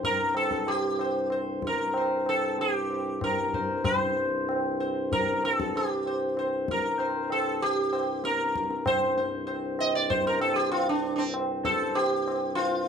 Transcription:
Already playing: harmonium C2 G2
0.03 sitar A#4, tabla tin, tabla ge
0.35 sitar A4, tabla na
0.51 tabla ke
0.67 sitar G4, tabla na
0.99 sitar C5, tabla na
1.30 sitar C5, tabla na
1.62 tabla ke
1.67 sitar A#4
1.78 tabla te
1.94 sitar C5, tabla na
2.26 sitar A4, tabla na
2.58 sitar G4, tabla tin
2.90 tabla na
3.21 sitar A#4, tabla na, tabla ge
3.53 sitar C5, tabla ge
3.84 harmonium C2 G2, sitar C5, tabla na, tabla ge
4.17 tabla te
4.49 tabla na
4.80 sitar C5, tabla na
5.12 sitar A#4, tabla tin, tabla ge
5.44 sitar A4, tabla na
5.60 tabla ke
5.76 sitar G4, tabla na
6.06 sitar C5, tabla na
6.37 sitar C5, tabla na
6.68 sitar A#4, tabla ke
6.83 tabla te
6.99 sitar C5, tabla na
7.30 sitar A4, tabla na
7.61 sitar G4, tabla tin
7.92 sitar C5, tabla na
8.24 sitar A#4, tabla te
8.39 tabla te
8.55 tabla ke
8.70 tabla te
8.86 sitar C5, tabla na, tabla ge
9.17 sitar C5, tabla te
9.47 sitar C5, tabla na
9.79 sitar D#5, tabla na
9.95 sitar D5
10.10 sitar C5, tabla tin, tabla ge
10.27 sitar A#4
10.41 sitar A4, tabla na
10.56 sitar G4
10.71 sitar F4, tabla na
10.89 sitar D4
11.03 tabla na
11.16 sitar C4 D4
11.34 tabla na
11.65 sitar A4 C5, tabla ke
11.80 tabla te
11.95 sitar G4, tabla na
12.28 tabla na
12.55 sitar F4 C5, tabla tin

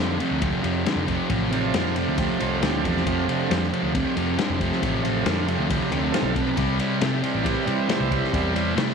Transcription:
Already playing: distorted electric guitar F2 D3, picked electric bass F2, tonewheel organ F3 A3 C4
0.19 distorted electric guitar F2 C3, ride
0.31 picked electric bass D2
0.41 distorted electric guitar F2 C3, kick, ride
0.63 distorted electric guitar F2 C3, picked electric bass F2, ride
0.85 distorted electric guitar F2 D3, snare, ride
0.96 picked electric bass F1
1.07 distorted electric guitar F2 C3, kick, ride
1.30 picked electric bass A1, distorted electric guitar F2 C3, kick, ride
1.50 distorted electric guitar F2 C3, tonewheel organ F3 A3 C4 D5, ride
1.74 picked electric bass F2, distorted electric guitar F2 D3, tonewheel organ F5, snare, ride
1.86 snare
1.96 distorted electric guitar F2 C3, tonewheel organ D5, ride
2.08 picked electric bass D2
2.18 distorted electric guitar F2 C3, tonewheel organ G4, kick, ride
2.39 picked electric bass C2, distorted electric guitar F2 C3, tonewheel organ C5, ride
2.61 picked electric bass D2, distorted electric guitar F2 D3, tonewheel organ G4, snare, ride
2.82 picked electric bass E2, distorted electric guitar F2 C3, tonewheel organ D4, kick, ride
2.96 snare
3.04 picked electric bass F1, distorted electric guitar F2 C3, tonewheel organ F3 A3 C4 F4, kick, ride
3.28 distorted electric guitar F2 C3, tonewheel organ D4, ride
3.50 distorted electric guitar F2 D3, picked electric bass F2, tonewheel organ G3, snare, ride
3.63 snare
3.72 distorted electric guitar F2 C3, tonewheel organ F3 A3 C4, ride
3.83 picked electric bass D2
3.95 distorted electric guitar F2 C3, tonewheel organ G3, kick, ride
4.17 distorted electric guitar F2 C3, picked electric bass F2, tonewheel organ C4, ride
4.38 distorted electric guitar F2 D3, snare, ride
4.50 picked electric bass F1
4.60 distorted electric guitar F2 C3, kick, ride
4.72 snare
4.82 picked electric bass A1, distorted electric guitar F2 C3, kick, ride
5.01 distorted electric guitar F2 C3, tonewheel organ F3 A3 C4, ride
5.23 picked electric bass F2, distorted electric guitar F2 D3, tonewheel organ C#4 D4, snare, ride
5.38 tonewheel organ F4, snare
5.48 distorted electric guitar F2 C3, ride
5.55 tonewheel organ G4
5.59 picked electric bass D2
5.69 distorted electric guitar F2 C3, tonewheel organ E4, kick, ride
5.84 tonewheel organ G4
5.91 picked electric bass D2, distorted electric guitar F2 C3, ride
5.99 tonewheel organ A4
6.12 distorted electric guitar F2 D3, tonewheel organ F3 A3 C4 F4, snare, ride
6.23 picked electric bass B1
6.29 tonewheel organ A4
6.36 distorted electric guitar F2 C3, kick, ride
6.41 tonewheel organ B4
6.57 picked electric bass C2, distorted electric guitar C3 G3, tonewheel organ G4, kick, ride
6.72 tonewheel organ B4
6.79 distorted electric guitar C3 G3, ride
6.89 tonewheel organ C5
7.01 distorted electric guitar C3 A3, picked electric bass C3, tonewheel organ A4, snare, ride
7.19 distorted electric guitar C3, tonewheel organ C5
7.23 tonewheel organ E3 G3 C4, distorted electric guitar G3, ride
7.35 picked electric bass A1, tonewheel organ D5
7.44 distorted electric guitar C3 G3, kick, ride
7.49 tonewheel organ B4
7.63 distorted electric guitar C3 G3, tonewheel organ D5
7.67 picked electric bass C3, ride
7.75 tonewheel organ E4 C5
7.88 distorted electric guitar C3 A3, snare, ride
8.01 picked electric bass C2
8.10 distorted electric guitar C3 G3, kick, ride
8.24 snare
8.33 picked electric bass E2, distorted electric guitar C3 G3, tonewheel organ E3 G3 C4, kick, ride
8.55 distorted electric guitar C3 G3, tonewheel organ E3 G3 C4, ride
8.75 distorted electric guitar C3 A3, picked electric bass C3, snare, ride
8.89 snare

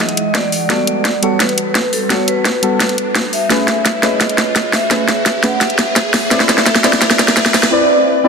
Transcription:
Already playing: ambient pad E3 G#3 F#5 D#6, synth stab F#3 D#4 E4 F#4 G#4, riser
0.00 vibraphone D#5
0.09 closed hi-hat
0.17 closed hi-hat
0.35 vibraphone D5, kick, snare, closed hi-hat
0.52 ambient pad G3 F#4 A4 B4, open hi-hat
0.69 synth stab G3 B3 F#4 A4, vibraphone D5, kick, snare, closed hi-hat
0.87 closed hi-hat
1.05 kick, snare, closed hi-hat
1.22 synth stab G3 B3 F#4 A4, vibraphone C#5, closed hi-hat
1.40 vibraphone B4, kick, snare, closed hi-hat
1.49 closed hi-hat
1.58 closed hi-hat
1.75 kick, snare, closed hi-hat
1.93 vibraphone A4, open hi-hat
2.09 synth stab G3 B3 F#4 A4, vibraphone C#5, kick, snare, closed hi-hat
2.28 vibraphone B4, closed hi-hat
2.45 kick, snare, closed hi-hat
2.62 synth stab G3 B3 F#4 A4, closed hi-hat
2.80 kick, snare, closed hi-hat
2.89 closed hi-hat
2.98 closed hi-hat
3.15 kick, snare, closed hi-hat
3.33 vibraphone E5, open hi-hat
3.49 synth stab A3 C#4 G#4 B4, ambient pad A3 G#4 C#5, kick, snare, closed hi-hat
3.68 snare, closed hi-hat
3.86 kick, snare, closed hi-hat
4.02 synth stab A3 C#4 G#4 B4, vibraphone D#5, snare, closed hi-hat
4.21 kick, snare, closed hi-hat
4.29 closed hi-hat
4.38 snare, closed hi-hat
4.56 kick, snare, closed hi-hat
4.73 vibraphone E5, snare, open hi-hat
4.90 synth stab A3 C#4 G#4 B4, kick, snare, closed hi-hat
5.08 snare, closed hi-hat
5.26 kick, snare, closed hi-hat
5.43 synth stab A3 C#4 G#4 B4, vibraphone F#5, snare, closed hi-hat
5.61 vibraphone E5, kick, snare, closed hi-hat
5.70 closed hi-hat
5.79 snare, closed hi-hat
5.96 kick, snare, closed hi-hat
6.14 ambient pad C4 E4 D5, snare, open hi-hat
6.30 synth stab C4 E4 B4 D5, vibraphone E5, kick, snare, closed hi-hat
6.40 snare
6.49 snare, closed hi-hat
6.58 snare
6.66 kick, snare, closed hi-hat
6.75 snare
6.84 synth stab C4 E4 B4 D5, snare, closed hi-hat
6.93 snare
7.02 kick, snare, closed hi-hat
7.10 snare, closed hi-hat
7.19 snare, closed hi-hat
7.28 snare
7.37 kick, snare, closed hi-hat
7.46 snare
7.54 snare, open hi-hat
7.63 snare
7.70 synth stab C4 E4 B4 D5
8.24 synth stab C4 E4 B4 D5

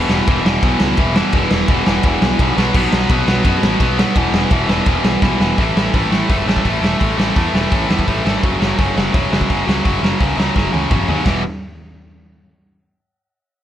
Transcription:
Already playing: distorted electric guitar E2 B2 E3
0.09 picked electric bass E1, snare
0.27 picked electric bass E1, distorted electric guitar E2 B2 E3, kick, ride
0.45 picked electric bass E1, distorted electric guitar E2 B2 E3, snare
0.62 picked electric bass B1, distorted electric guitar E2 B2 E3, kick, ride
0.80 picked electric bass C#2, snare
0.97 picked electric bass E1, distorted electric guitar E2 B2 E3, kick, ride
1.15 distorted electric guitar E2 B2 E3, snare
1.32 picked electric bass E1, distorted electric guitar E2 B2 E3, kick, ride
1.51 picked electric bass E1, snare
1.68 picked electric bass E1, distorted electric guitar E2 B2 E3, kick, ride
1.86 picked electric bass E1, distorted electric guitar E2 B2 E3, snare
2.03 picked electric bass E1, distorted electric guitar E2 B2 E3, kick, ride
2.22 picked electric bass B1, snare
2.39 picked electric bass B1, distorted electric guitar E2 B2 E3, kick, ride
2.56 picked electric bass B1, distorted electric guitar B2 F#3 B3, snare
2.74 picked electric bass B1, distorted electric guitar B2 F#3 B3, kick, crash
2.93 picked electric bass B1, snare
3.10 picked electric bass B1, distorted electric guitar B2 F#3 B3, kick, ride
3.28 picked electric bass B1, distorted electric guitar B2 F#3 B3, snare
3.44 picked electric bass F#2, distorted electric guitar B2 F#3 B3, kick, ride
3.62 picked electric bass A1, snare
3.80 picked electric bass B1, distorted electric guitar B2 F#3 B3, kick, ride
3.98 distorted electric guitar B2 F#3 B3, snare
4.16 picked electric bass E1, distorted electric guitar E2 B2 E3, kick, ride
4.33 picked electric bass E1, snare
4.51 picked electric bass E1, distorted electric guitar E2 B2 E3, kick, ride
4.68 picked electric bass E1, distorted electric guitar E2 B2 E3, snare
4.86 picked electric bass E1, distorted electric guitar E2 B2 E3, kick, ride
5.04 picked electric bass B1, snare
5.22 picked electric bass B1, distorted electric guitar E2 B2 E3, kick, snare
5.39 picked electric bass E1, distorted electric guitar E2 B2 E3, snare
5.57 picked electric bass A1, distorted electric guitar A2 E3 A3, kick, open hi-hat
5.76 picked electric bass A1, distorted electric guitar A2 E3 A3, snare
5.94 picked electric bass A1, distorted electric guitar A2 E3 A3, kick, open hi-hat
6.10 picked electric bass A1, distorted electric guitar A2 E3 A3, snare
6.29 picked electric bass F#1, distorted electric guitar A2 E3 A3, kick, open hi-hat
6.46 picked electric bass A1, distorted electric guitar A2 E3 A3, snare
6.56 kick
6.64 picked electric bass A1, distorted electric guitar A2 E3 A3, kick, open hi-hat
6.81 picked electric bass E1, distorted electric guitar A2 E3 A3, snare
6.98 picked electric bass A1, distorted electric guitar A2 E3 A3, kick, open hi-hat
7.17 picked electric bass A1, distorted electric guitar A2 E3 A3, snare
7.35 picked electric bass E2, distorted electric guitar A2 E3 A3, kick, open hi-hat
7.53 picked electric bass E1, distorted electric guitar A2 E3 A3, snare
7.70 picked electric bass A1, distorted electric guitar A2 E3 A3, kick, open hi-hat
7.89 picked electric bass E2, distorted electric guitar A2 E3 A3, snare
7.99 kick
8.07 picked electric bass A1, distorted electric guitar A2 E3 A3, kick, open hi-hat
8.24 picked electric bass G#1, distorted electric guitar A2 E3 A3, snare
8.43 picked electric bass F#1, distorted electric guitar F#2 C#3 F#3, kick, open hi-hat
8.60 picked electric bass F#1, distorted electric guitar F#2 C#3 F#3, snare
8.77 picked electric bass F#1, distorted electric guitar F#2 C#3 F#3, kick, open hi-hat
8.95 picked electric bass F#1, distorted electric guitar F#2 C#3 F#3, snare
9.14 picked electric bass E1, distorted electric guitar F#2 C#3 F#3, kick, open hi-hat
9.31 picked electric bass F#1, distorted electric guitar F#2 C#3 F#3, snare
9.41 kick
9.49 picked electric bass F#1, distorted electric guitar F#2 C#3 F#3, kick, open hi-hat
9.66 picked electric bass C#2, distorted electric guitar F#2 C#3 F#3, snare
9.83 picked electric bass F#1, distorted electric guitar F#2 C#3 F#3, kick, open hi-hat
10.01 picked electric bass F#1, distorted electric guitar F#2 C#3 F#3, snare
10.19 picked electric bass C#2, distorted electric guitar F#2 C#3 F#3, kick, open hi-hat
10.37 picked electric bass C#2, distorted electric guitar F#2 C#3 F#3, snare
10.55 picked electric bass F#1, distorted electric guitar F#2 C#3 F#3, kick, snare
10.72 picked electric bass C#2, distorted electric guitar F#2 C#3 F#3, high tom
10.89 picked electric bass F#1, distorted electric guitar F#2 C#3 F#3, kick, mid tom
11.08 picked electric bass D#2, distorted electric guitar F#2 C#3 F#3, floor tom
11.25 picked electric bass E1, distorted electric guitar E2 B2 E3, kick, snare, crash

